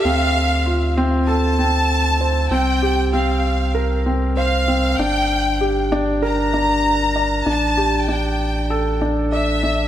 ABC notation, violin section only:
X:1
M:4/4
L:1/8
Q:1/4=97
K:Dm
V:1 name="Violin section"
f3 z a4 | g2 f3 z f2 | g3 z b4 | a2 g3 z e2 |]